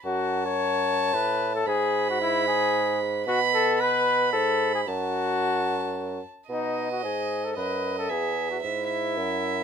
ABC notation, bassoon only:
X:1
M:3/4
L:1/8
Q:1/4=112
K:F#dor
V:1 name="Bassoon" clef=bass
F,,4 A,,2 | G,,6 | B,,4 G,,2 | F,,4- F,, z |
B,,2 G,,2 F,,2 | E,,2 G,,2 F,,2 |]